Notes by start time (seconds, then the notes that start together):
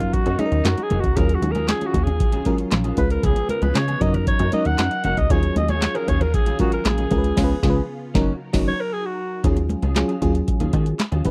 Already playing: F#1 F#3 C#4 D#4 F4 A#4
0.00 muted clean electric guitar stroke, closed hi-hat, low conga
0.13 F#4, muted clean electric guitar stroke, kick, closed hi-hat
0.26 F#2 F#3 A#3 D#4 F#4, closed hi-hat
0.39 F#3 C#4 D#4 G#4, muted clean electric guitar stroke, closed hi-hat, high conga
0.46 A#4
0.52 D#2, muted clean electric guitar stroke, closed hi-hat
0.65 F#2 F#4, snare, clap, closed hi-hat, muted conga
0.78 muted clean electric guitar stroke, closed hi-hat, muted conga
0.83 G#4
0.90 F#1 F#3 A#3 D#4 F#4, closed hi-hat, high conga, low conga
1.00 C#2 F#4, muted clean electric guitar stroke, kick, closed hi-hat
1.16 D#2 D#3 F#3 C#4 F4 G#4 A#4, kick, closed hi-hat, muted conga
1.29 muted clean electric guitar stroke, closed hi-hat
1.34 F#4
1.42 D#2, muted clean electric guitar stroke, closed hi-hat, high conga
1.51 G#4 A#4, closed hi-hat, high conga
1.56 F#3 C#4 F4
1.68 G#4, muted clean electric guitar stroke, snare, clap, closed hi-hat, muted conga
1.81 F#3 C#4 F4 G#4, closed hi-hat, muted conga
1.86 F#4
1.94 D#2 F#3 C#4 F4 G#4, kick, closed hi-hat, low conga
2.03 G#4, muted clean electric guitar stroke, closed hi-hat
2.07 low conga
2.20 A#1, muted clean electric guitar stroke, kick, closed hi-hat
2.32 F#3 C#4 F4 G#4, closed hi-hat, muted conga
2.45 F#3 C#4 F4 G#4 A#4, kick, closed hi-hat, high conga
2.58 muted clean electric guitar stroke, closed hi-hat
2.71 A#1, muted clean electric guitar stroke, snare, clap, closed hi-hat, muted conga
2.84 F#3 C#4 F4 G#4, closed hi-hat, muted conga
2.97 C#2 C#3 G#3 B3 C#4 F4 B4, muted clean electric guitar stroke, kick, closed hi-hat, high conga, low conga
3.10 A#4, muted clean electric guitar stroke, closed hi-hat
3.23 C#2 F3 B3 C#4 G#4, kick, closed hi-hat, muted conga
3.36 muted clean electric guitar stroke, closed hi-hat, muted conga
3.49 A#4, muted clean electric guitar stroke, closed hi-hat, high conga
3.62 C#2 F3 B3 C#4 G#4 B4, closed hi-hat, high conga
3.75 C#3 C#5, muted clean electric guitar stroke, snare, clap, closed hi-hat
3.88 F3 B3 C#4 G#4, closed hi-hat, muted conga
4.01 F#1 F#3 A#3 C#4 D#4 F#4 A#4 D#5, kick, closed hi-hat, low conga
4.14 A#4, muted clean electric guitar stroke, closed hi-hat, low conga
4.27 C#5, muted clean electric guitar stroke, kick, closed hi-hat, muted conga
4.39 F#2 F#3 A#3 D#4 F#4, closed hi-hat, muted conga
4.52 F#3 A#3 C#4 D#4 F#4 A#4 D#5, closed hi-hat, high conga
4.65 D#2 F#5, muted clean electric guitar stroke, closed hi-hat
4.78 F#2, snare, clap, closed hi-hat, muted conga
4.91 muted clean electric guitar stroke, closed hi-hat
5.04 F#1 F#3 A#3 D#4 F#4 F#5, closed hi-hat, high conga, low conga
5.17 C#2 D#5, muted clean electric guitar stroke, kick, closed hi-hat
5.30 D#2 D#3 F#3 C#4 F4 G#4 C#5, kick, closed hi-hat, muted conga
5.43 muted clean electric guitar stroke, closed hi-hat, muted conga
5.56 D#2 D#5, muted clean electric guitar stroke, closed hi-hat, high conga
5.68 F#3 C#4 F4 G#4 C#5, closed hi-hat, high conga
5.82 muted clean electric guitar stroke, snare, clap, closed hi-hat, muted conga
5.95 F#3 C#4 F4 G#4 A#4, closed hi-hat
6.07 D#2 F#3 C#4 F4 G#4 C#5, kick, closed hi-hat, low conga
6.20 A#4, muted clean electric guitar stroke, closed hi-hat, low conga
6.33 A#1 G#4, muted clean electric guitar stroke, kick, closed hi-hat, muted conga
6.46 F#3 C#4 F4 G#4, closed hi-hat, muted conga
6.59 F#3 C#4 F4 F#4 G#4 A#4, kick, closed hi-hat, high conga
6.72 A#4, muted clean electric guitar stroke, closed hi-hat
6.85 A#1 G#4, muted clean electric guitar stroke, snare, clap, closed hi-hat, muted conga
6.98 F#3 C#4 F4 G#4, closed hi-hat, muted conga
7.11 C#2 C#3 G#3 B3 C#4 F4 A#4, muted clean electric guitar stroke, kick, closed hi-hat, high conga, low conga
7.18 B4
7.24 muted clean electric guitar stroke, closed hi-hat
7.37 C#2 F3 G#3 B3 C#4 F4 G#4, kick, snare, crash
7.44 B4
7.63 C#2 F3 G#3 B3 C#4 F4 G#4, kick, snare
7.70 B4
8.14 F#1 D#3 F#3 A#3 C#4 D#4 F#4 A#4, kick, snare
8.53 F#1 D#3 F#3 A#3 C#4 D#4 F#4, kick, snare, crash
8.68 C#5
8.80 A#4
8.93 G#4
9.06 F#4
9.44 D#2 F#3 C#4 F4 G#4, kick, closed hi-hat
9.57 muted clean electric guitar stroke, closed hi-hat, muted conga
9.69 muted clean electric guitar stroke, closed hi-hat, high conga
9.82 C#2 F#3 C#4 F4 G#4, closed hi-hat, high conga
9.96 F#3 C#4 F4 G#4, snare, clap, closed hi-hat, muted conga
10.08 F#3 C#4 F4 G#4, closed hi-hat
10.21 D#2 F#3 C#4 F4 G#4, kick, closed hi-hat, low conga
10.34 muted clean electric guitar stroke, closed hi-hat
10.47 muted clean electric guitar stroke, kick, closed hi-hat, muted conga
10.60 D#2 F#3 C#4 F4 G#4, closed hi-hat, muted conga
10.73 D#3 F#3 C#4 F4 G#4, kick, closed hi-hat, high conga
10.86 muted clean electric guitar stroke, closed hi-hat
10.99 muted clean electric guitar stroke, snare, clap, closed hi-hat, muted conga
11.12 D#2 F#3 C#4 F4 G#4, closed hi-hat, muted conga
11.25 C#2 G#3 C#4 E4 B4, muted clean electric guitar stroke, kick, closed hi-hat, low conga